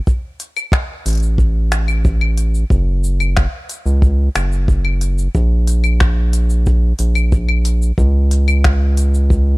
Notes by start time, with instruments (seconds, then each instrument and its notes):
0.07 kick, cabasa
0.40 closed hi-hat, cabasa
0.57 cabasa, claves
0.72 finger snap, kick, cabasa
1.06 analog synth bass A1, closed hi-hat, cabasa
1.08 closed hi-hat
1.10 closed hi-hat
1.13 closed hi-hat
1.15 closed hi-hat
1.17 closed hi-hat
1.20 closed hi-hat, cabasa
1.38 kick, cabasa
1.72 finger snap, closed hi-hat, cabasa
1.88 cabasa, claves
2.05 kick, cabasa
2.21 claves
2.38 closed hi-hat, cabasa
2.55 cabasa
2.70 analog synth bass F#1, kick, cabasa
3.04 cabasa
3.20 cabasa, claves
3.37 finger snap, kick, cabasa
3.69 closed hi-hat, cabasa
3.86 analog synth bass C#2, cabasa
4.02 kick, cabasa
4.36 analog synth bass F#1, finger snap, closed hi-hat, cabasa, claves
4.52 cabasa
4.68 kick, cabasa
4.85 claves
5.01 closed hi-hat, cabasa
5.18 cabasa
5.35 analog synth bass A#1, kick, cabasa
5.68 closed hi-hat, cabasa
5.84 cabasa, claves
6.00 finger snap, kick, cabasa
6.33 closed hi-hat, cabasa
6.50 cabasa
6.66 kick, cabasa
6.99 analog synth bass A#1, closed hi-hat, cabasa
7.15 cabasa, claves
7.32 kick, cabasa
7.49 claves
7.65 closed hi-hat, cabasa
7.82 cabasa
7.98 analog synth bass C#2, kick, cabasa
8.31 closed hi-hat, cabasa
8.48 cabasa, claves
8.64 finger snap, kick, cabasa
8.97 closed hi-hat, cabasa
9.14 cabasa
9.30 kick, cabasa